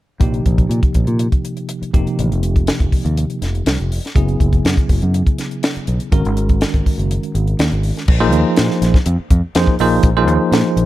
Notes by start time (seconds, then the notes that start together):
0.20 A#1 C3 F3 A#3 D#4 G4, kick, closed hi-hat
0.34 closed hi-hat
0.46 A#1, kick, closed hi-hat
0.58 kick, closed hi-hat
0.69 A#2, closed hi-hat
0.83 kick, closed hi-hat
0.94 A#1, kick, closed hi-hat
1.07 A#2, closed hi-hat
1.19 closed hi-hat
1.32 kick, closed hi-hat
1.45 closed hi-hat
1.57 closed hi-hat
1.69 closed hi-hat
1.82 muted fingered electric bass stroke, closed hi-hat
1.94 F1 C3 F3 A#3 D#4 G4, kick, closed hi-hat
2.07 closed hi-hat
2.19 A1, closed hi-hat
2.32 F1, closed hi-hat
2.43 closed hi-hat
2.56 kick, closed hi-hat
2.67 snare, closed hi-hat
2.80 F1, kick, closed hi-hat
2.92 muted fingered electric bass stroke, kick, open hi-hat
3.05 D#2, closed hi-hat
3.17 closed hi-hat
3.30 closed hi-hat
3.42 F1, snare, closed hi-hat
3.55 closed hi-hat
3.66 C2, snare, closed hi-hat
3.79 F1, closed hi-hat
3.92 open hi-hat
4.05 snare, closed hi-hat
4.15 F#1 C#3 F#3 B3 E4 G#4, kick, closed hi-hat
4.28 closed hi-hat
4.40 F#1, kick, closed hi-hat
4.53 kick, closed hi-hat
4.65 F#2, snare, closed hi-hat
4.77 kick, closed hi-hat
4.89 F#1, kick, open hi-hat
5.02 F#2, closed hi-hat
5.14 closed hi-hat
5.27 kick, closed hi-hat
5.38 snare, closed hi-hat
5.51 closed hi-hat
5.63 snare, closed hi-hat
5.76 muted fingered electric bass stroke, closed hi-hat
5.87 B1, closed hi-hat
6.00 closed hi-hat
6.12 G#1 D#3 G#3 C#4 F#4 A#4, kick, closed hi-hat
6.25 G#1, closed hi-hat
6.37 closed hi-hat
6.49 kick, closed hi-hat
6.61 snare, closed hi-hat
6.74 G#1, kick, closed hi-hat
6.86 muted fingered electric bass stroke, kick, open hi-hat
6.98 F#1, closed hi-hat
7.11 closed hi-hat
7.23 closed hi-hat
7.35 G#1, closed hi-hat
7.47 closed hi-hat
7.59 D#2, snare, closed hi-hat
7.72 G#1, closed hi-hat
7.83 open hi-hat
7.96 snare, closed hi-hat
8.08 A#1, kick, crash
8.20 F3 A#3 D#4 G#4 C5
8.32 D#2, closed hi-hat
8.56 A#2, snare, closed hi-hat
8.71 snare
8.82 A#1, snare, closed hi-hat
8.94 kick, snare
9.06 F2, closed hi-hat
9.19 muted fingered electric bass stroke
9.31 F2, kick, closed hi-hat
9.55 F2 F3 A#3 D#4 G#4 C5, snare, closed hi-hat
9.67 kick
9.79 A#1 F3 A#3 D#4 G#4 C5, open hi-hat
10.03 A#1, kick, closed hi-hat
10.17 F3 A#3 D#4 G#4 C5
10.27 D#2, closed hi-hat
10.52 A#2, snare, closed hi-hat
10.76 A#1, closed hi-hat